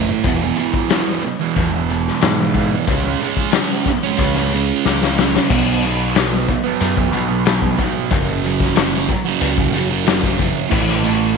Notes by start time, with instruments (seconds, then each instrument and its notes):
Already playing: picked electric bass F#1, distorted electric guitar A2
0.09 distorted electric guitar E3 A3
0.24 picked electric bass E1, distorted electric guitar E2 B2 E3, kick, closed hi-hat
0.42 distorted electric guitar B2 E3
0.56 distorted electric guitar E2 B2 E3, closed hi-hat
0.74 kick
0.89 distorted electric guitar E2 B2 E3, snare, closed hi-hat, tambourine
1.22 muted distorted electric guitar stroke, closed hi-hat
1.39 distorted electric guitar B2 E3
1.56 picked electric bass E1, kick, closed hi-hat
1.73 distorted electric guitar B2 E3
1.90 distorted electric guitar E2 B2 E3, closed hi-hat
2.08 snare
2.21 distorted electric guitar E2 B2 E3, picked electric bass G#2, snare, closed hi-hat, tambourine
2.39 distorted electric guitar B2 E3
2.54 distorted electric guitar E2 B2 E3, kick, closed hi-hat
2.71 distorted electric guitar B2 E3
2.87 picked electric bass C#2, distorted electric guitar C#3 G#3 C#4, kick, closed hi-hat
3.04 distorted electric guitar G#3 C#4
3.20 distorted electric guitar C#3 G#3, closed hi-hat
3.24 distorted electric guitar C#4
3.37 kick
3.52 distorted electric guitar C#3 G#3, snare, closed hi-hat, tambourine
3.56 distorted electric guitar C#4
3.85 muted distorted electric guitar stroke, kick, snare, closed hi-hat
4.04 distorted electric guitar G#3 C#4
4.17 picked electric bass C#2, kick, closed hi-hat
4.34 distorted electric guitar C#4, snare
4.39 distorted electric guitar G#3
4.50 distorted electric guitar C#3 G#3, closed hi-hat
4.55 distorted electric guitar C#4
4.84 picked electric bass C#2, distorted electric guitar C#3 G#3, snare, tambourine
4.89 distorted electric guitar C#4
5.02 distorted electric guitar G#3 C#4, snare
5.19 distorted electric guitar C#3 G#3 C#4, snare
5.33 distorted electric guitar G#3 C#4, snare
5.50 picked electric bass B1, distorted electric guitar B2 F#3 B3, kick, crash
5.82 distorted electric guitar B2 F#3 B3, closed hi-hat, tambourine
6.15 distorted electric guitar B2 F#3 B3, snare, closed hi-hat, tambourine
6.32 distorted electric guitar F#3 B3
6.48 muted distorted electric guitar stroke, kick, closed hi-hat, tambourine
6.64 distorted electric guitar F#3 B3
6.81 picked electric bass F#2, closed hi-hat, tambourine
6.97 distorted electric guitar F#3 B3, kick
7.12 picked electric bass B1, distorted electric guitar B2 F#3 B3, closed hi-hat, tambourine
7.29 distorted electric guitar F#3 B3
7.46 distorted electric guitar B2 F#3 B3, snare, closed hi-hat, tambourine
7.61 distorted electric guitar F#3 B3, kick
7.78 distorted electric guitar B2 F#3 B3, kick, closed hi-hat, tambourine
8.11 picked electric bass F#1, distorted electric guitar F#2 C#3 F#3, kick, closed hi-hat
8.44 distorted electric guitar F#2 C#3 F#3, closed hi-hat, tambourine
8.60 kick, snare
8.75 distorted electric guitar F#2 C#3 F#3, snare, closed hi-hat, tambourine
8.92 distorted electric guitar C#3 F#3
9.08 muted distorted electric guitar stroke, kick, closed hi-hat, tambourine
9.25 distorted electric guitar C#3 F#3
9.41 picked electric bass C#2, closed hi-hat, tambourine
9.57 distorted electric guitar C#3 F#3, kick
9.73 picked electric bass F#1, distorted electric guitar F#2 C#3 F#3, closed hi-hat, tambourine
9.90 distorted electric guitar C#3 F#3
10.05 distorted electric guitar F#2 C#3 F#3, snare, closed hi-hat, tambourine
10.22 distorted electric guitar C#3 F#3, kick, snare
10.38 distorted electric guitar F#2 C#3 F#3, kick, closed hi-hat, tambourine
10.69 picked electric bass A1, distorted electric guitar A2 E3 A3, kick, crash
10.89 snare
11.03 distorted electric guitar A2 E3 A3, closed hi-hat, tambourine